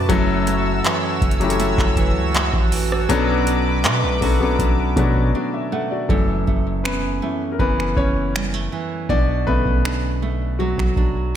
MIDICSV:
0, 0, Header, 1, 6, 480
1, 0, Start_track
1, 0, Tempo, 750000
1, 61, Time_signature, 4, 2, 24, 8
1, 7272, End_track
2, 0, Start_track
2, 0, Title_t, "Analog synth pad"
2, 0, Program_c, 0, 89
2, 0, Note_on_c, 0, 81, 82
2, 59, Note_on_c, 0, 66, 92
2, 59, Note_on_c, 0, 73, 81
2, 59, Note_on_c, 0, 88, 102
2, 1961, Note_off_c, 0, 73, 0
2, 1961, Note_off_c, 0, 88, 0
2, 1981, Note_on_c, 0, 86, 100
2, 1982, Note_on_c, 0, 71, 81
2, 3874, Note_off_c, 0, 66, 0
2, 3874, Note_off_c, 0, 81, 0
2, 3882, Note_off_c, 0, 71, 0
2, 3882, Note_off_c, 0, 86, 0
2, 7272, End_track
3, 0, Start_track
3, 0, Title_t, "Grand piano"
3, 0, Program_c, 1, 0
3, 0, Control_c, 1, 64, 127
3, 0, Note_on_c, 1, 54, 88
3, 0, Note_on_c, 1, 59, 77
3, 0, Note_on_c, 1, 61, 80
3, 0, Note_on_c, 1, 62, 81
3, 0, Note_on_c, 1, 69, 95
3, 0, Note_on_c, 1, 71, 97
3, 57, Note_off_c, 1, 54, 0
3, 57, Note_on_c, 1, 54, 115
3, 61, Note_on_c, 1, 57, 110
3, 66, Note_off_c, 1, 61, 0
3, 66, Note_on_c, 1, 61, 104
3, 68, Control_c, 1, 64, 0
3, 70, Note_off_c, 1, 62, 0
3, 70, Note_on_c, 1, 64, 101
3, 72, Note_off_c, 1, 59, 0
3, 72, Note_off_c, 1, 71, 0
3, 74, Note_off_c, 1, 69, 0
3, 75, Note_on_c, 1, 69, 125
3, 169, Control_c, 1, 64, 127
3, 679, Note_off_c, 1, 54, 0
3, 682, Note_off_c, 1, 57, 0
3, 684, Note_off_c, 1, 61, 0
3, 686, Note_off_c, 1, 64, 0
3, 689, Note_off_c, 1, 69, 0
3, 897, Note_on_c, 1, 54, 86
3, 902, Note_on_c, 1, 57, 80
3, 906, Note_on_c, 1, 61, 80
3, 910, Note_on_c, 1, 64, 78
3, 915, Note_on_c, 1, 67, 77
3, 950, Note_off_c, 1, 67, 0
3, 956, Note_on_c, 1, 69, 93
3, 1608, Note_off_c, 1, 54, 0
3, 1611, Note_off_c, 1, 57, 0
3, 1613, Note_off_c, 1, 61, 0
3, 1615, Note_off_c, 1, 64, 0
3, 1638, Note_off_c, 1, 69, 0
3, 1978, Note_on_c, 1, 54, 116
3, 1983, Note_on_c, 1, 59, 104
3, 1986, Note_on_c, 1, 61, 101
3, 1990, Control_c, 1, 64, 0
3, 1991, Note_on_c, 1, 62, 101
3, 1995, Note_on_c, 1, 69, 122
3, 2088, Control_c, 1, 64, 127
3, 2512, Note_off_c, 1, 54, 0
3, 2514, Note_off_c, 1, 59, 0
3, 2516, Note_off_c, 1, 61, 0
3, 2518, Note_off_c, 1, 62, 0
3, 2520, Note_off_c, 1, 69, 0
3, 2694, Note_on_c, 1, 54, 79
3, 2699, Note_on_c, 1, 59, 71
3, 2703, Note_on_c, 1, 61, 70
3, 2708, Note_on_c, 1, 62, 71
3, 2713, Note_on_c, 1, 69, 88
3, 2786, Note_off_c, 1, 54, 0
3, 2789, Note_off_c, 1, 59, 0
3, 2791, Note_off_c, 1, 61, 0
3, 2793, Note_off_c, 1, 62, 0
3, 2795, Note_off_c, 1, 69, 0
3, 2817, Note_on_c, 1, 54, 82
3, 2822, Note_on_c, 1, 59, 81
3, 2826, Note_on_c, 1, 61, 73
3, 2830, Note_on_c, 1, 62, 80
3, 2834, Note_on_c, 1, 69, 92
3, 3085, Note_off_c, 1, 54, 0
3, 3088, Note_off_c, 1, 59, 0
3, 3089, Note_off_c, 1, 61, 0
3, 3091, Note_off_c, 1, 62, 0
3, 3094, Note_off_c, 1, 69, 0
3, 3179, Note_on_c, 1, 54, 87
3, 3183, Note_on_c, 1, 59, 80
3, 3187, Note_on_c, 1, 61, 77
3, 3191, Note_on_c, 1, 62, 80
3, 3196, Note_on_c, 1, 66, 92
3, 3421, Note_off_c, 1, 66, 0
3, 3428, Note_on_c, 1, 74, 63
3, 3431, Note_on_c, 1, 66, 58
3, 3538, Note_off_c, 1, 74, 0
3, 3540, Note_off_c, 1, 66, 0
3, 3544, Note_on_c, 1, 76, 69
3, 3656, Note_off_c, 1, 76, 0
3, 3664, Note_on_c, 1, 78, 72
3, 3668, Note_on_c, 1, 69, 58
3, 3712, Note_off_c, 1, 54, 0
3, 3714, Note_off_c, 1, 59, 0
3, 3716, Note_off_c, 1, 61, 0
3, 3718, Note_off_c, 1, 62, 0
3, 3777, Note_off_c, 1, 78, 0
3, 3778, Note_off_c, 1, 69, 0
3, 3783, Note_on_c, 1, 74, 67
3, 3787, Note_on_c, 1, 66, 54
3, 3897, Note_on_c, 1, 69, 87
3, 3900, Note_on_c, 1, 52, 57
3, 3904, Note_on_c, 1, 57, 65
3, 3908, Note_on_c, 1, 61, 58
3, 3910, Control_c, 1, 64, 0
3, 4010, Note_off_c, 1, 74, 0
3, 4012, Note_off_c, 1, 66, 0
3, 4035, Control_c, 1, 64, 127
3, 4359, Note_off_c, 1, 57, 0
3, 4377, Note_on_c, 1, 71, 84
3, 4390, Note_on_c, 1, 59, 69
3, 4393, Note_off_c, 1, 69, 0
3, 4595, Note_off_c, 1, 52, 0
3, 4599, Note_off_c, 1, 61, 0
3, 4624, Note_on_c, 1, 52, 47
3, 4627, Note_on_c, 1, 57, 43
3, 4630, Note_on_c, 1, 61, 51
3, 4795, Note_off_c, 1, 59, 0
3, 4813, Note_on_c, 1, 70, 69
3, 4827, Note_off_c, 1, 71, 0
3, 4839, Note_off_c, 1, 52, 0
3, 4840, Note_off_c, 1, 57, 0
3, 4842, Note_off_c, 1, 61, 0
3, 4859, Note_off_c, 1, 70, 0
3, 4859, Note_on_c, 1, 71, 92
3, 4871, Note_on_c, 1, 59, 74
3, 5083, Note_off_c, 1, 71, 0
3, 5090, Note_off_c, 1, 59, 0
3, 5100, Note_on_c, 1, 73, 100
3, 5115, Note_on_c, 1, 61, 77
3, 5802, Note_off_c, 1, 61, 0
3, 5819, Note_on_c, 1, 74, 103
3, 5829, Control_c, 1, 64, 0
3, 5834, Note_on_c, 1, 62, 80
3, 5842, Note_off_c, 1, 73, 0
3, 5938, Control_c, 1, 64, 127
3, 6051, Note_off_c, 1, 62, 0
3, 6059, Note_on_c, 1, 71, 101
3, 6065, Note_on_c, 1, 50, 57
3, 6067, Note_off_c, 1, 74, 0
3, 6068, Note_on_c, 1, 57, 51
3, 6073, Note_on_c, 1, 61, 60
3, 6075, Note_on_c, 1, 59, 78
3, 6382, Note_off_c, 1, 50, 0
3, 6384, Note_off_c, 1, 57, 0
3, 6386, Note_off_c, 1, 61, 0
3, 6754, Note_off_c, 1, 71, 0
3, 6762, Note_off_c, 1, 59, 0
3, 6777, Note_on_c, 1, 66, 80
3, 6792, Note_on_c, 1, 54, 58
3, 7272, Note_off_c, 1, 54, 0
3, 7272, Note_off_c, 1, 66, 0
3, 7272, End_track
4, 0, Start_track
4, 0, Title_t, "Nylon-string guitar"
4, 0, Program_c, 2, 24
4, 0, Note_on_c, 2, 57, 61
4, 0, Note_on_c, 2, 62, 64
4, 0, Note_on_c, 2, 66, 68
4, 60, Note_on_c, 2, 42, 90
4, 109, Note_off_c, 2, 62, 0
4, 298, Note_off_c, 2, 57, 0
4, 300, Note_on_c, 2, 57, 63
4, 541, Note_on_c, 2, 52, 67
4, 560, Note_off_c, 2, 66, 0
4, 782, Note_on_c, 2, 61, 72
4, 1017, Note_off_c, 2, 57, 0
4, 1020, Note_on_c, 2, 57, 70
4, 1253, Note_off_c, 2, 52, 0
4, 1261, Note_on_c, 2, 52, 66
4, 1501, Note_off_c, 2, 57, 0
4, 1503, Note_on_c, 2, 57, 61
4, 1735, Note_off_c, 2, 52, 0
4, 1742, Note_on_c, 2, 52, 60
4, 1980, Note_off_c, 2, 42, 0
4, 1981, Note_on_c, 2, 47, 91
4, 2029, Note_off_c, 2, 61, 0
4, 2030, Note_off_c, 2, 52, 0
4, 2220, Note_on_c, 2, 62, 63
4, 2459, Note_off_c, 2, 57, 0
4, 2462, Note_on_c, 2, 57, 65
4, 2701, Note_on_c, 2, 66, 72
4, 2935, Note_off_c, 2, 62, 0
4, 2942, Note_on_c, 2, 62, 67
4, 3180, Note_off_c, 2, 57, 0
4, 3183, Note_on_c, 2, 57, 62
4, 3415, Note_off_c, 2, 62, 0
4, 3423, Note_on_c, 2, 62, 62
4, 3660, Note_off_c, 2, 57, 0
4, 3662, Note_on_c, 2, 57, 61
4, 3901, Note_off_c, 2, 47, 0
4, 3903, Note_on_c, 2, 42, 85
4, 3950, Note_off_c, 2, 62, 0
4, 4140, Note_off_c, 2, 57, 0
4, 4142, Note_on_c, 2, 57, 61
4, 4382, Note_on_c, 2, 61, 65
4, 4620, Note_off_c, 2, 57, 0
4, 4622, Note_on_c, 2, 57, 62
4, 4862, Note_on_c, 2, 52, 66
4, 4881, Note_off_c, 2, 66, 0
4, 5096, Note_off_c, 2, 61, 0
4, 5104, Note_on_c, 2, 61, 66
4, 5341, Note_off_c, 2, 57, 0
4, 5343, Note_on_c, 2, 55, 59
4, 5463, Note_off_c, 2, 55, 0
4, 5463, Note_on_c, 2, 57, 53
4, 5575, Note_off_c, 2, 52, 0
4, 5583, Note_on_c, 2, 52, 58
4, 5822, Note_off_c, 2, 42, 0
4, 5823, Note_on_c, 2, 47, 81
4, 5870, Note_off_c, 2, 52, 0
4, 5870, Note_off_c, 2, 57, 0
4, 5870, Note_off_c, 2, 61, 0
4, 6062, Note_on_c, 2, 57, 60
4, 6302, Note_on_c, 2, 62, 69
4, 6541, Note_off_c, 2, 57, 0
4, 6543, Note_on_c, 2, 57, 60
4, 6782, Note_on_c, 2, 54, 65
4, 7014, Note_off_c, 2, 62, 0
4, 7022, Note_on_c, 2, 62, 66
4, 7259, Note_off_c, 2, 57, 0
4, 7272, Note_off_c, 2, 47, 0
4, 7272, Note_off_c, 2, 54, 0
4, 7272, Note_off_c, 2, 62, 0
4, 7272, End_track
5, 0, Start_track
5, 0, Title_t, "808-style bass"
5, 0, Program_c, 3, 38
5, 60, Note_on_c, 3, 30, 121
5, 521, Note_off_c, 3, 30, 0
5, 779, Note_on_c, 3, 30, 98
5, 1126, Note_off_c, 3, 30, 0
5, 1140, Note_on_c, 3, 30, 108
5, 1380, Note_on_c, 3, 37, 97
5, 1390, Note_off_c, 3, 30, 0
5, 1608, Note_off_c, 3, 37, 0
5, 1621, Note_on_c, 3, 33, 100
5, 1966, Note_off_c, 3, 33, 0
5, 1979, Note_on_c, 3, 35, 114
5, 2461, Note_on_c, 3, 47, 101
5, 2470, Note_off_c, 3, 35, 0
5, 2581, Note_on_c, 3, 35, 106
5, 2591, Note_off_c, 3, 47, 0
5, 2695, Note_off_c, 3, 35, 0
5, 2698, Note_on_c, 3, 35, 105
5, 2930, Note_off_c, 3, 35, 0
5, 2939, Note_on_c, 3, 35, 111
5, 3170, Note_off_c, 3, 35, 0
5, 3178, Note_on_c, 3, 47, 105
5, 3410, Note_off_c, 3, 47, 0
5, 3900, Note_on_c, 3, 30, 118
5, 4131, Note_off_c, 3, 30, 0
5, 4146, Note_on_c, 3, 30, 102
5, 4382, Note_on_c, 3, 28, 98
5, 4392, Note_off_c, 3, 30, 0
5, 4502, Note_on_c, 3, 30, 95
5, 4511, Note_off_c, 3, 28, 0
5, 4615, Note_off_c, 3, 30, 0
5, 4860, Note_on_c, 3, 30, 107
5, 5091, Note_off_c, 3, 30, 0
5, 5098, Note_on_c, 3, 30, 104
5, 5560, Note_off_c, 3, 30, 0
5, 5820, Note_on_c, 3, 35, 113
5, 6051, Note_off_c, 3, 35, 0
5, 6065, Note_on_c, 3, 35, 104
5, 6877, Note_off_c, 3, 35, 0
5, 6900, Note_on_c, 3, 35, 105
5, 7272, Note_off_c, 3, 35, 0
5, 7272, End_track
6, 0, Start_track
6, 0, Title_t, "Drums"
6, 60, Note_on_c, 9, 36, 113
6, 61, Note_on_c, 9, 42, 71
6, 124, Note_off_c, 9, 36, 0
6, 125, Note_off_c, 9, 42, 0
6, 301, Note_on_c, 9, 42, 69
6, 365, Note_off_c, 9, 42, 0
6, 541, Note_on_c, 9, 42, 64
6, 547, Note_on_c, 9, 39, 112
6, 605, Note_off_c, 9, 42, 0
6, 611, Note_off_c, 9, 39, 0
6, 779, Note_on_c, 9, 36, 100
6, 781, Note_on_c, 9, 42, 41
6, 841, Note_off_c, 9, 42, 0
6, 841, Note_on_c, 9, 42, 49
6, 843, Note_off_c, 9, 36, 0
6, 902, Note_off_c, 9, 42, 0
6, 902, Note_on_c, 9, 42, 56
6, 961, Note_off_c, 9, 42, 0
6, 961, Note_on_c, 9, 42, 69
6, 1022, Note_off_c, 9, 42, 0
6, 1022, Note_on_c, 9, 42, 65
6, 1086, Note_off_c, 9, 42, 0
6, 1140, Note_on_c, 9, 36, 88
6, 1149, Note_on_c, 9, 39, 64
6, 1204, Note_off_c, 9, 36, 0
6, 1213, Note_off_c, 9, 39, 0
6, 1257, Note_on_c, 9, 36, 94
6, 1261, Note_on_c, 9, 42, 59
6, 1321, Note_off_c, 9, 36, 0
6, 1325, Note_off_c, 9, 42, 0
6, 1501, Note_on_c, 9, 42, 67
6, 1508, Note_on_c, 9, 39, 121
6, 1565, Note_off_c, 9, 42, 0
6, 1572, Note_off_c, 9, 39, 0
6, 1621, Note_on_c, 9, 36, 86
6, 1685, Note_off_c, 9, 36, 0
6, 1742, Note_on_c, 9, 46, 71
6, 1806, Note_off_c, 9, 46, 0
6, 1870, Note_on_c, 9, 37, 94
6, 1934, Note_off_c, 9, 37, 0
6, 1982, Note_on_c, 9, 42, 74
6, 2046, Note_off_c, 9, 42, 0
6, 2220, Note_on_c, 9, 42, 68
6, 2284, Note_off_c, 9, 42, 0
6, 2457, Note_on_c, 9, 42, 65
6, 2464, Note_on_c, 9, 39, 109
6, 2521, Note_off_c, 9, 42, 0
6, 2528, Note_off_c, 9, 39, 0
6, 2699, Note_on_c, 9, 36, 96
6, 2702, Note_on_c, 9, 46, 52
6, 2763, Note_off_c, 9, 36, 0
6, 2766, Note_off_c, 9, 46, 0
6, 2939, Note_on_c, 9, 36, 91
6, 2942, Note_on_c, 9, 42, 68
6, 3003, Note_off_c, 9, 36, 0
6, 3006, Note_off_c, 9, 42, 0
6, 3178, Note_on_c, 9, 36, 98
6, 3181, Note_on_c, 9, 42, 56
6, 3242, Note_off_c, 9, 36, 0
6, 3245, Note_off_c, 9, 42, 0
6, 3299, Note_on_c, 9, 36, 89
6, 3363, Note_off_c, 9, 36, 0
6, 3900, Note_on_c, 9, 36, 105
6, 3964, Note_off_c, 9, 36, 0
6, 4146, Note_on_c, 9, 36, 80
6, 4210, Note_off_c, 9, 36, 0
6, 4386, Note_on_c, 9, 26, 101
6, 4450, Note_off_c, 9, 26, 0
6, 4860, Note_on_c, 9, 36, 80
6, 4924, Note_off_c, 9, 36, 0
6, 4991, Note_on_c, 9, 26, 60
6, 5055, Note_off_c, 9, 26, 0
6, 5099, Note_on_c, 9, 36, 85
6, 5163, Note_off_c, 9, 36, 0
6, 5349, Note_on_c, 9, 26, 105
6, 5413, Note_off_c, 9, 26, 0
6, 5820, Note_on_c, 9, 36, 113
6, 5884, Note_off_c, 9, 36, 0
6, 6066, Note_on_c, 9, 36, 81
6, 6130, Note_off_c, 9, 36, 0
6, 6180, Note_on_c, 9, 36, 86
6, 6244, Note_off_c, 9, 36, 0
6, 6306, Note_on_c, 9, 26, 109
6, 6370, Note_off_c, 9, 26, 0
6, 6900, Note_on_c, 9, 36, 79
6, 6908, Note_on_c, 9, 26, 59
6, 6964, Note_off_c, 9, 36, 0
6, 6972, Note_off_c, 9, 26, 0
6, 7017, Note_on_c, 9, 36, 86
6, 7081, Note_off_c, 9, 36, 0
6, 7272, End_track
0, 0, End_of_file